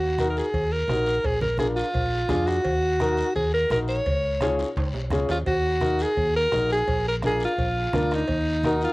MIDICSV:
0, 0, Header, 1, 6, 480
1, 0, Start_track
1, 0, Key_signature, -6, "minor"
1, 0, Tempo, 352319
1, 1693, Time_signature, 4, 2, 24, 8
1, 12165, End_track
2, 0, Start_track
2, 0, Title_t, "Alto saxophone"
2, 0, Program_c, 0, 65
2, 0, Note_on_c, 0, 66, 88
2, 365, Note_off_c, 0, 66, 0
2, 412, Note_on_c, 0, 70, 71
2, 517, Note_on_c, 0, 68, 96
2, 538, Note_off_c, 0, 70, 0
2, 982, Note_on_c, 0, 70, 100
2, 1003, Note_off_c, 0, 68, 0
2, 1716, Note_on_c, 0, 68, 100
2, 1737, Note_off_c, 0, 70, 0
2, 1924, Note_off_c, 0, 68, 0
2, 1932, Note_on_c, 0, 70, 85
2, 2156, Note_off_c, 0, 70, 0
2, 2170, Note_on_c, 0, 68, 88
2, 2279, Note_off_c, 0, 68, 0
2, 2402, Note_on_c, 0, 65, 96
2, 3373, Note_on_c, 0, 66, 105
2, 3393, Note_off_c, 0, 65, 0
2, 4563, Note_off_c, 0, 66, 0
2, 4572, Note_on_c, 0, 68, 96
2, 4795, Note_off_c, 0, 68, 0
2, 4819, Note_on_c, 0, 70, 110
2, 5039, Note_off_c, 0, 70, 0
2, 5065, Note_on_c, 0, 70, 90
2, 5170, Note_off_c, 0, 70, 0
2, 5297, Note_on_c, 0, 73, 105
2, 6201, Note_off_c, 0, 73, 0
2, 7234, Note_on_c, 0, 65, 93
2, 7337, Note_off_c, 0, 65, 0
2, 7455, Note_on_c, 0, 66, 111
2, 8201, Note_on_c, 0, 68, 111
2, 8221, Note_off_c, 0, 66, 0
2, 8663, Note_off_c, 0, 68, 0
2, 8671, Note_on_c, 0, 70, 122
2, 9110, Note_off_c, 0, 70, 0
2, 9156, Note_on_c, 0, 68, 108
2, 9593, Note_off_c, 0, 68, 0
2, 9650, Note_on_c, 0, 70, 97
2, 9750, Note_off_c, 0, 70, 0
2, 9891, Note_on_c, 0, 68, 107
2, 10097, Note_off_c, 0, 68, 0
2, 10148, Note_on_c, 0, 65, 105
2, 11097, Note_on_c, 0, 63, 103
2, 11117, Note_off_c, 0, 65, 0
2, 12036, Note_off_c, 0, 63, 0
2, 12044, Note_on_c, 0, 65, 95
2, 12165, Note_off_c, 0, 65, 0
2, 12165, End_track
3, 0, Start_track
3, 0, Title_t, "Upright piano"
3, 0, Program_c, 1, 0
3, 265, Note_on_c, 1, 63, 76
3, 269, Note_on_c, 1, 66, 68
3, 270, Note_on_c, 1, 70, 86
3, 596, Note_off_c, 1, 63, 0
3, 598, Note_off_c, 1, 66, 0
3, 598, Note_off_c, 1, 70, 0
3, 1221, Note_on_c, 1, 63, 75
3, 1224, Note_on_c, 1, 66, 65
3, 1230, Note_on_c, 1, 70, 78
3, 1553, Note_off_c, 1, 63, 0
3, 1555, Note_off_c, 1, 66, 0
3, 1558, Note_off_c, 1, 70, 0
3, 2166, Note_on_c, 1, 62, 74
3, 2171, Note_on_c, 1, 70, 80
3, 2177, Note_on_c, 1, 65, 76
3, 2506, Note_off_c, 1, 62, 0
3, 2508, Note_off_c, 1, 70, 0
3, 2511, Note_off_c, 1, 65, 0
3, 3112, Note_on_c, 1, 62, 90
3, 3117, Note_on_c, 1, 65, 81
3, 3119, Note_on_c, 1, 68, 98
3, 3458, Note_off_c, 1, 62, 0
3, 3461, Note_off_c, 1, 65, 0
3, 3462, Note_off_c, 1, 68, 0
3, 4088, Note_on_c, 1, 63, 93
3, 4090, Note_on_c, 1, 66, 91
3, 4106, Note_on_c, 1, 70, 112
3, 4426, Note_off_c, 1, 63, 0
3, 4427, Note_off_c, 1, 66, 0
3, 4435, Note_off_c, 1, 70, 0
3, 5060, Note_on_c, 1, 63, 73
3, 5064, Note_on_c, 1, 66, 68
3, 5065, Note_on_c, 1, 70, 86
3, 5392, Note_off_c, 1, 63, 0
3, 5394, Note_off_c, 1, 66, 0
3, 5395, Note_off_c, 1, 70, 0
3, 6011, Note_on_c, 1, 61, 86
3, 6012, Note_on_c, 1, 65, 85
3, 6018, Note_on_c, 1, 68, 102
3, 6348, Note_off_c, 1, 61, 0
3, 6348, Note_off_c, 1, 65, 0
3, 6351, Note_off_c, 1, 68, 0
3, 6972, Note_on_c, 1, 65, 81
3, 6977, Note_on_c, 1, 61, 94
3, 6982, Note_on_c, 1, 68, 100
3, 7309, Note_off_c, 1, 65, 0
3, 7311, Note_off_c, 1, 61, 0
3, 7314, Note_off_c, 1, 68, 0
3, 7917, Note_on_c, 1, 63, 79
3, 7921, Note_on_c, 1, 70, 93
3, 7923, Note_on_c, 1, 66, 70
3, 8261, Note_off_c, 1, 63, 0
3, 8263, Note_off_c, 1, 70, 0
3, 8264, Note_off_c, 1, 66, 0
3, 8876, Note_on_c, 1, 66, 66
3, 8881, Note_on_c, 1, 63, 78
3, 8887, Note_on_c, 1, 70, 80
3, 9221, Note_off_c, 1, 66, 0
3, 9224, Note_off_c, 1, 63, 0
3, 9226, Note_off_c, 1, 70, 0
3, 9852, Note_on_c, 1, 62, 78
3, 9855, Note_on_c, 1, 65, 72
3, 9865, Note_on_c, 1, 70, 91
3, 10189, Note_off_c, 1, 62, 0
3, 10191, Note_off_c, 1, 65, 0
3, 10196, Note_off_c, 1, 70, 0
3, 10815, Note_on_c, 1, 62, 89
3, 10815, Note_on_c, 1, 65, 89
3, 10822, Note_on_c, 1, 70, 96
3, 11151, Note_off_c, 1, 62, 0
3, 11151, Note_off_c, 1, 65, 0
3, 11155, Note_off_c, 1, 70, 0
3, 11790, Note_on_c, 1, 63, 97
3, 11790, Note_on_c, 1, 66, 88
3, 11792, Note_on_c, 1, 70, 110
3, 12119, Note_off_c, 1, 63, 0
3, 12119, Note_off_c, 1, 66, 0
3, 12120, Note_off_c, 1, 70, 0
3, 12165, End_track
4, 0, Start_track
4, 0, Title_t, "Fingered electric bass"
4, 0, Program_c, 2, 33
4, 0, Note_on_c, 2, 39, 93
4, 541, Note_off_c, 2, 39, 0
4, 734, Note_on_c, 2, 39, 106
4, 1118, Note_off_c, 2, 39, 0
4, 1205, Note_on_c, 2, 34, 92
4, 1593, Note_off_c, 2, 34, 0
4, 1688, Note_on_c, 2, 34, 92
4, 2458, Note_off_c, 2, 34, 0
4, 2654, Note_on_c, 2, 34, 99
4, 3038, Note_off_c, 2, 34, 0
4, 3129, Note_on_c, 2, 41, 95
4, 3514, Note_off_c, 2, 41, 0
4, 3609, Note_on_c, 2, 39, 100
4, 4378, Note_off_c, 2, 39, 0
4, 4575, Note_on_c, 2, 39, 99
4, 4958, Note_off_c, 2, 39, 0
4, 5049, Note_on_c, 2, 34, 96
4, 5434, Note_off_c, 2, 34, 0
4, 5534, Note_on_c, 2, 37, 91
4, 6302, Note_off_c, 2, 37, 0
4, 6494, Note_on_c, 2, 37, 103
4, 6685, Note_off_c, 2, 37, 0
4, 6718, Note_on_c, 2, 35, 74
4, 6941, Note_off_c, 2, 35, 0
4, 6970, Note_on_c, 2, 37, 79
4, 7187, Note_off_c, 2, 37, 0
4, 7211, Note_on_c, 2, 39, 83
4, 7428, Note_off_c, 2, 39, 0
4, 7449, Note_on_c, 2, 39, 98
4, 8219, Note_off_c, 2, 39, 0
4, 8408, Note_on_c, 2, 39, 114
4, 8795, Note_off_c, 2, 39, 0
4, 8903, Note_on_c, 2, 34, 92
4, 9283, Note_off_c, 2, 34, 0
4, 9369, Note_on_c, 2, 34, 97
4, 10139, Note_off_c, 2, 34, 0
4, 10331, Note_on_c, 2, 34, 106
4, 10716, Note_off_c, 2, 34, 0
4, 10817, Note_on_c, 2, 38, 93
4, 11200, Note_off_c, 2, 38, 0
4, 11295, Note_on_c, 2, 39, 103
4, 12063, Note_off_c, 2, 39, 0
4, 12165, End_track
5, 0, Start_track
5, 0, Title_t, "Two-headed folk drums"
5, 253, Note_on_c, 9, 37, 81
5, 389, Note_off_c, 9, 37, 0
5, 731, Note_on_c, 9, 36, 86
5, 867, Note_off_c, 9, 36, 0
5, 1218, Note_on_c, 9, 37, 83
5, 1354, Note_off_c, 9, 37, 0
5, 1692, Note_on_c, 9, 36, 88
5, 1828, Note_off_c, 9, 36, 0
5, 2163, Note_on_c, 9, 37, 85
5, 2299, Note_off_c, 9, 37, 0
5, 2654, Note_on_c, 9, 36, 95
5, 2790, Note_off_c, 9, 36, 0
5, 3119, Note_on_c, 9, 37, 86
5, 3255, Note_off_c, 9, 37, 0
5, 3376, Note_on_c, 9, 37, 69
5, 3512, Note_off_c, 9, 37, 0
5, 3611, Note_on_c, 9, 36, 86
5, 3748, Note_off_c, 9, 36, 0
5, 4087, Note_on_c, 9, 37, 82
5, 4223, Note_off_c, 9, 37, 0
5, 4576, Note_on_c, 9, 36, 89
5, 4712, Note_off_c, 9, 36, 0
5, 5055, Note_on_c, 9, 37, 90
5, 5192, Note_off_c, 9, 37, 0
5, 5534, Note_on_c, 9, 36, 96
5, 5670, Note_off_c, 9, 36, 0
5, 6002, Note_on_c, 9, 37, 85
5, 6138, Note_off_c, 9, 37, 0
5, 6491, Note_on_c, 9, 36, 85
5, 6627, Note_off_c, 9, 36, 0
5, 6967, Note_on_c, 9, 37, 90
5, 6968, Note_on_c, 9, 36, 69
5, 7104, Note_off_c, 9, 36, 0
5, 7104, Note_off_c, 9, 37, 0
5, 7448, Note_on_c, 9, 36, 97
5, 7584, Note_off_c, 9, 36, 0
5, 7919, Note_on_c, 9, 37, 85
5, 8055, Note_off_c, 9, 37, 0
5, 8405, Note_on_c, 9, 36, 93
5, 8542, Note_off_c, 9, 36, 0
5, 8882, Note_on_c, 9, 37, 82
5, 9018, Note_off_c, 9, 37, 0
5, 9370, Note_on_c, 9, 36, 94
5, 9506, Note_off_c, 9, 36, 0
5, 9841, Note_on_c, 9, 37, 89
5, 9977, Note_off_c, 9, 37, 0
5, 10330, Note_on_c, 9, 36, 89
5, 10466, Note_off_c, 9, 36, 0
5, 10809, Note_on_c, 9, 37, 83
5, 10945, Note_off_c, 9, 37, 0
5, 11060, Note_on_c, 9, 37, 76
5, 11196, Note_off_c, 9, 37, 0
5, 11294, Note_on_c, 9, 36, 92
5, 11430, Note_off_c, 9, 36, 0
5, 11778, Note_on_c, 9, 37, 83
5, 11914, Note_off_c, 9, 37, 0
5, 12165, End_track
6, 0, Start_track
6, 0, Title_t, "Drums"
6, 249, Note_on_c, 9, 63, 88
6, 254, Note_on_c, 9, 73, 72
6, 385, Note_off_c, 9, 63, 0
6, 391, Note_off_c, 9, 73, 0
6, 504, Note_on_c, 9, 73, 73
6, 641, Note_off_c, 9, 73, 0
6, 727, Note_on_c, 9, 63, 35
6, 736, Note_on_c, 9, 56, 92
6, 744, Note_on_c, 9, 74, 65
6, 863, Note_off_c, 9, 63, 0
6, 872, Note_off_c, 9, 56, 0
6, 880, Note_off_c, 9, 74, 0
6, 1199, Note_on_c, 9, 63, 88
6, 1217, Note_on_c, 9, 66, 74
6, 1228, Note_on_c, 9, 73, 70
6, 1335, Note_off_c, 9, 63, 0
6, 1353, Note_off_c, 9, 66, 0
6, 1364, Note_off_c, 9, 73, 0
6, 1449, Note_on_c, 9, 73, 72
6, 1585, Note_off_c, 9, 73, 0
6, 1680, Note_on_c, 9, 63, 40
6, 1693, Note_on_c, 9, 74, 74
6, 1695, Note_on_c, 9, 56, 113
6, 1816, Note_off_c, 9, 63, 0
6, 1830, Note_off_c, 9, 74, 0
6, 1831, Note_off_c, 9, 56, 0
6, 1923, Note_on_c, 9, 64, 80
6, 2060, Note_off_c, 9, 64, 0
6, 2148, Note_on_c, 9, 63, 88
6, 2162, Note_on_c, 9, 73, 74
6, 2284, Note_off_c, 9, 63, 0
6, 2298, Note_off_c, 9, 73, 0
6, 2410, Note_on_c, 9, 73, 75
6, 2546, Note_off_c, 9, 73, 0
6, 2637, Note_on_c, 9, 63, 38
6, 2639, Note_on_c, 9, 74, 69
6, 2647, Note_on_c, 9, 56, 93
6, 2773, Note_off_c, 9, 63, 0
6, 2775, Note_off_c, 9, 74, 0
6, 2783, Note_off_c, 9, 56, 0
6, 3119, Note_on_c, 9, 63, 89
6, 3119, Note_on_c, 9, 64, 91
6, 3123, Note_on_c, 9, 73, 68
6, 3129, Note_on_c, 9, 66, 72
6, 3256, Note_off_c, 9, 63, 0
6, 3256, Note_off_c, 9, 64, 0
6, 3259, Note_off_c, 9, 73, 0
6, 3265, Note_off_c, 9, 66, 0
6, 3369, Note_on_c, 9, 73, 70
6, 3505, Note_off_c, 9, 73, 0
6, 3598, Note_on_c, 9, 63, 37
6, 3603, Note_on_c, 9, 56, 110
6, 3608, Note_on_c, 9, 74, 78
6, 3734, Note_off_c, 9, 63, 0
6, 3740, Note_off_c, 9, 56, 0
6, 3744, Note_off_c, 9, 74, 0
6, 4087, Note_on_c, 9, 63, 83
6, 4088, Note_on_c, 9, 73, 74
6, 4224, Note_off_c, 9, 63, 0
6, 4224, Note_off_c, 9, 73, 0
6, 4322, Note_on_c, 9, 73, 72
6, 4458, Note_off_c, 9, 73, 0
6, 4562, Note_on_c, 9, 74, 71
6, 4567, Note_on_c, 9, 63, 36
6, 4574, Note_on_c, 9, 56, 90
6, 4698, Note_off_c, 9, 74, 0
6, 4703, Note_off_c, 9, 63, 0
6, 4710, Note_off_c, 9, 56, 0
6, 5043, Note_on_c, 9, 63, 92
6, 5047, Note_on_c, 9, 73, 69
6, 5179, Note_off_c, 9, 63, 0
6, 5183, Note_off_c, 9, 73, 0
6, 5284, Note_on_c, 9, 73, 70
6, 5421, Note_off_c, 9, 73, 0
6, 5530, Note_on_c, 9, 63, 39
6, 5532, Note_on_c, 9, 56, 115
6, 5534, Note_on_c, 9, 74, 74
6, 5667, Note_off_c, 9, 63, 0
6, 5668, Note_off_c, 9, 56, 0
6, 5670, Note_off_c, 9, 74, 0
6, 6005, Note_on_c, 9, 63, 81
6, 6009, Note_on_c, 9, 73, 74
6, 6021, Note_on_c, 9, 65, 115
6, 6141, Note_off_c, 9, 63, 0
6, 6145, Note_off_c, 9, 73, 0
6, 6157, Note_off_c, 9, 65, 0
6, 6254, Note_on_c, 9, 73, 70
6, 6258, Note_on_c, 9, 65, 71
6, 6391, Note_off_c, 9, 73, 0
6, 6394, Note_off_c, 9, 65, 0
6, 6484, Note_on_c, 9, 74, 74
6, 6488, Note_on_c, 9, 63, 34
6, 6500, Note_on_c, 9, 56, 89
6, 6500, Note_on_c, 9, 65, 105
6, 6620, Note_off_c, 9, 74, 0
6, 6624, Note_off_c, 9, 63, 0
6, 6636, Note_off_c, 9, 56, 0
6, 6636, Note_off_c, 9, 65, 0
6, 6733, Note_on_c, 9, 66, 72
6, 6869, Note_off_c, 9, 66, 0
6, 6955, Note_on_c, 9, 63, 90
6, 6955, Note_on_c, 9, 64, 88
6, 6964, Note_on_c, 9, 73, 70
6, 7091, Note_off_c, 9, 63, 0
6, 7091, Note_off_c, 9, 64, 0
6, 7100, Note_off_c, 9, 73, 0
6, 7205, Note_on_c, 9, 66, 88
6, 7207, Note_on_c, 9, 73, 68
6, 7341, Note_off_c, 9, 66, 0
6, 7344, Note_off_c, 9, 73, 0
6, 7441, Note_on_c, 9, 63, 36
6, 7443, Note_on_c, 9, 56, 111
6, 7447, Note_on_c, 9, 74, 77
6, 7577, Note_off_c, 9, 63, 0
6, 7580, Note_off_c, 9, 56, 0
6, 7583, Note_off_c, 9, 74, 0
6, 7910, Note_on_c, 9, 63, 86
6, 7918, Note_on_c, 9, 73, 70
6, 8046, Note_off_c, 9, 63, 0
6, 8054, Note_off_c, 9, 73, 0
6, 8163, Note_on_c, 9, 73, 81
6, 8299, Note_off_c, 9, 73, 0
6, 8402, Note_on_c, 9, 63, 34
6, 8406, Note_on_c, 9, 56, 85
6, 8412, Note_on_c, 9, 74, 73
6, 8538, Note_off_c, 9, 63, 0
6, 8543, Note_off_c, 9, 56, 0
6, 8548, Note_off_c, 9, 74, 0
6, 8881, Note_on_c, 9, 66, 76
6, 8887, Note_on_c, 9, 63, 93
6, 8890, Note_on_c, 9, 73, 78
6, 9017, Note_off_c, 9, 66, 0
6, 9023, Note_off_c, 9, 63, 0
6, 9026, Note_off_c, 9, 73, 0
6, 9131, Note_on_c, 9, 73, 72
6, 9267, Note_off_c, 9, 73, 0
6, 9369, Note_on_c, 9, 56, 105
6, 9369, Note_on_c, 9, 63, 37
6, 9374, Note_on_c, 9, 74, 78
6, 9505, Note_off_c, 9, 56, 0
6, 9505, Note_off_c, 9, 63, 0
6, 9510, Note_off_c, 9, 74, 0
6, 9844, Note_on_c, 9, 73, 74
6, 9847, Note_on_c, 9, 63, 83
6, 9980, Note_off_c, 9, 73, 0
6, 9984, Note_off_c, 9, 63, 0
6, 10085, Note_on_c, 9, 73, 81
6, 10221, Note_off_c, 9, 73, 0
6, 10330, Note_on_c, 9, 74, 74
6, 10335, Note_on_c, 9, 56, 93
6, 10336, Note_on_c, 9, 63, 38
6, 10466, Note_off_c, 9, 74, 0
6, 10472, Note_off_c, 9, 56, 0
6, 10472, Note_off_c, 9, 63, 0
6, 10806, Note_on_c, 9, 63, 92
6, 10806, Note_on_c, 9, 64, 94
6, 10818, Note_on_c, 9, 73, 73
6, 10943, Note_off_c, 9, 63, 0
6, 10943, Note_off_c, 9, 64, 0
6, 10954, Note_off_c, 9, 73, 0
6, 11052, Note_on_c, 9, 73, 70
6, 11188, Note_off_c, 9, 73, 0
6, 11276, Note_on_c, 9, 56, 111
6, 11283, Note_on_c, 9, 63, 40
6, 11291, Note_on_c, 9, 74, 76
6, 11412, Note_off_c, 9, 56, 0
6, 11419, Note_off_c, 9, 63, 0
6, 11427, Note_off_c, 9, 74, 0
6, 11762, Note_on_c, 9, 63, 81
6, 11767, Note_on_c, 9, 73, 75
6, 11898, Note_off_c, 9, 63, 0
6, 11903, Note_off_c, 9, 73, 0
6, 12003, Note_on_c, 9, 73, 73
6, 12140, Note_off_c, 9, 73, 0
6, 12165, End_track
0, 0, End_of_file